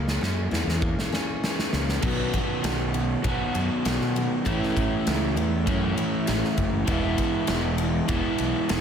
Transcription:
0.00 0.17 C#2 medium
0.00 1.13 F#2 medium
0.00 0.80 A#3 medium
0.08 snare medium
0.21 0.47 F#2 loud
0.21 1.11 C#4 medium
0.21 snare medium
0.51 0.65 E2 medium
0.51 1.42 E3 medium
0.51 snare medium
0.67 0.93 E2 medium
0.67 snare medium
0.81 1.72 A#3 medium
0.81 kick loud
0.99 snare medium
1.12 2.04 C#4 medium
1.12 snare medium
1.44 2.04 E3 medium
1.44 snare medium
1.59 snare medium
1.73 1.99 C#2 medium
1.73 2.04 A#3 medium
1.73 snare loud
1.89 snare medium
2.02 2.29 B1 medium
2.02 3.22 B2 medium
2.02 2.32 B2 medium
2.02 3.23 D#3 medium
2.02 3.24 F#3 medium
2.02 2.33 F#3 medium
2.02 3.23 B3 medium
2.02 2.33 B3 medium
2.02 3.25 F#4 loud
2.02 kick loud
2.02 crash loud
2.34 2.62 B2 medium
2.34 2.62 F#3 medium
2.34 kick medium
2.34 ride medium
2.64 3.15 B1 medium
2.64 2.92 B2 medium
2.64 2.92 F#3 medium
2.64 snare loud
2.64 ride medium
2.94 3.22 B2 medium
2.94 3.22 F#3 medium
2.94 ride medium
3.23 3.37 B1 medium
3.23 4.43 B2 medium
3.23 3.52 B2 medium
3.23 4.44 D#3 medium
3.23 3.52 F#3 medium
3.23 4.46 F#3 medium
3.23 4.45 B3 medium
3.23 4.47 F#4 medium
3.23 kick loud
3.23 ride medium
3.54 3.68 F#2 medium
3.54 3.82 B2 medium
3.54 3.82 F#3 medium
3.54 ride medium
3.85 3.98 B1 medium
3.85 4.13 B2 medium
3.85 4.13 F#3 medium
3.85 snare loud
3.85 ride medium
4.01 4.26 B2 medium
4.01 snare soft
4.16 4.43 B2 medium
4.16 4.44 F#3 medium
4.16 ride medium
4.45 4.59 A1 loud
4.45 4.74 A2 medium
4.45 5.65 A2 medium
4.45 4.74 E3 medium
4.45 5.66 E3 medium
4.45 5.66 A3 loud
4.45 4.75 A3 loud
4.45 5.66 C#4 medium
4.45 5.68 E4 medium
4.45 kick loud
4.45 ride medium
4.63 snare soft
4.76 4.89 A1 medium
4.76 5.04 A2 medium
4.76 5.04 E3 medium
4.76 kick medium
4.76 ride medium
5.07 5.38 C#2 medium
5.07 5.34 A2 medium
5.07 5.34 E3 medium
5.07 snare loud
5.07 ride medium
5.36 5.67 E2 medium
5.36 5.64 A2 medium
5.36 5.64 E3 medium
5.36 ride medium
5.66 5.92 F#2 loud
5.66 6.86 A2 medium
5.66 5.94 A2 medium
5.66 6.85 E3 medium
5.66 5.95 E3 medium
5.66 6.86 A3 medium
5.66 6.87 C#4 medium
5.66 6.88 E4 medium
5.66 kick loud
5.66 ride medium
5.97 6.25 A2 medium
5.97 6.25 E3 medium
5.97 ride medium
6.27 6.41 A1 loud
6.27 6.56 A2 medium
6.27 6.56 E3 medium
6.27 snare loud
6.27 ride medium
6.44 snare soft
6.57 6.83 F#1 medium
6.57 6.86 A2 medium
6.57 6.86 E3 medium
6.57 kick medium
6.57 ride medium
6.85 7.13 E1 loud
6.85 8.07 E3 medium
6.85 8.08 G#3 medium
6.85 8.09 B3 medium
6.85 8.09 E4 loud
6.85 kick loud
6.85 ride medium
7.18 kick medium
7.18 ride medium
7.47 8.00 E1 loud
7.47 snare loud
7.47 ride medium
7.78 ride medium
8.08 8.22 E1 loud
8.08 8.81 E3 medium
8.08 8.81 G#3 medium
8.08 8.81 B3 medium
8.08 8.81 E4 medium
8.08 kick loud
8.08 ride medium
8.38 8.53 B1 medium
8.38 ride medium
8.69 8.81 E1 loud
8.69 snare loud
8.69 ride medium

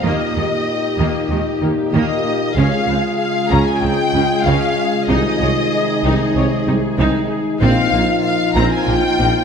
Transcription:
0.00 0.11 D#2 medium
0.00 0.16 D#2 medium
0.00 2.52 A#2 medium
0.00 0.11 D#3 medium
0.00 2.52 A#3 medium
0.00 2.56 D#4 medium
0.00 1.61 D#5 medium
0.00 1.59 D#5 medium
0.05 0.34 A#3 medium
0.05 2.57 G4 medium
0.05 2.53 G4 medium
0.35 0.47 D#2 soft
0.35 0.43 D#2 soft
0.35 0.43 D#3 soft
0.35 0.44 G#3 soft
0.98 1.10 D#2 medium
0.98 1.06 D#2 medium
0.98 1.07 D#3 medium
0.98 1.28 A#3 medium
1.29 1.37 D#2 soft
1.29 1.42 D#2 soft
1.29 1.38 D#3 soft
1.29 1.39 G#3 soft
1.60 1.73 D#2 soft
1.60 1.69 D#2 soft
1.60 1.69 D#3 soft
1.60 1.70 A#3 soft
1.91 2.04 D#2 medium
1.91 2.01 D#2 medium
1.91 2.02 D#3 medium
1.91 2.23 A#3 medium
1.91 2.52 D#5 medium
2.55 2.68 C#2 medium
2.55 2.64 C#2 medium
2.55 2.65 C#3 medium
2.55 5.05 C#3 medium
2.55 5.05 G#3 medium
2.55 7.58 G#3 medium
2.55 2.86 C#4 medium
2.55 5.72 F4 medium
2.55 7.58 G#4 medium
2.55 3.17 F5 medium
2.55 3.18 F5 medium
2.86 2.99 C#2 soft
2.86 2.95 C#2 soft
2.86 2.96 C#3 soft
2.86 2.97 C4 soft
3.18 3.50 F5 medium
3.18 3.51 F5 medium
3.48 3.63 C#2 medium
3.48 3.59 C#2 medium
3.48 3.58 C#3 medium
3.48 3.80 C#4 medium
3.48 3.66 A#5 medium
3.48 3.67 A#5 medium
3.65 3.82 G#5 medium
3.79 3.90 C#2 soft
3.79 3.95 C#2 soft
3.79 3.90 C#3 soft
3.79 3.91 C4 soft
3.79 4.44 G5 medium
3.79 4.45 G5 medium
4.13 4.26 C#2 soft
4.13 4.22 C#2 soft
4.13 4.22 C#3 soft
4.13 4.23 C#4 medium
4.43 4.58 C#2 medium
4.43 4.53 C#2 medium
4.43 4.54 C#3 medium
4.43 4.75 C#4 medium
4.43 5.08 F5 medium
4.43 5.09 F5 medium
5.07 5.21 C2 medium
5.07 5.17 C2 medium
5.07 5.16 C3 medium
5.07 7.45 C3 medium
5.07 7.62 D#3 medium
5.07 5.38 D#4 medium
5.07 6.63 D#5 medium
5.40 5.53 C2 soft
5.40 5.48 C2 soft
5.40 5.48 C3 soft
5.40 5.49 C#5 soft
5.72 9.44 D#4 medium
6.03 6.11 C2 medium
6.03 6.16 C2 medium
6.03 6.12 C3 medium
6.03 6.33 D#4 medium
6.34 6.42 C2 soft
6.34 6.48 C2 soft
6.34 6.44 C3 medium
6.34 6.44 C#5 medium
6.67 6.79 C2 soft
6.67 6.75 C2 medium
6.67 6.75 C3 soft
6.67 6.76 D#4 medium
6.98 7.06 C2 medium
6.98 7.11 C2 medium
6.98 7.06 C3 medium
6.98 7.28 D#4 medium
7.60 7.69 A#1 medium
7.60 7.74 A#1 medium
7.60 8.52 A#2 medium
7.60 9.44 A#2 medium
7.60 7.70 A#2 medium
7.60 9.44 F3 medium
7.60 9.44 A#3 medium
7.60 7.91 C4 medium
7.60 9.44 F4 medium
7.60 8.20 F5 medium
7.60 8.21 F5 medium
7.92 8.00 A#1 medium
7.92 8.06 A#1 soft
7.92 8.01 A#2 medium
7.92 8.01 A#3 soft
8.23 8.55 F5 medium
8.23 8.56 F5 medium
8.54 8.63 A#1 medium
8.54 8.68 A#1 medium
8.54 8.64 A#2 medium
8.54 8.85 C4 medium
8.54 8.71 A#5 medium
8.54 8.72 A#5 medium
8.72 8.87 G#5 medium
8.72 8.88 G#5 medium
8.87 8.95 A#1 medium
8.87 9.01 A#1 medium
8.87 8.96 A#2 medium
8.87 8.95 A#3 medium
8.87 9.44 G5 medium
9.18 9.27 A#1 medium
9.18 9.32 A#1 medium
9.18 9.28 A#2 medium
9.18 9.26 C4 soft

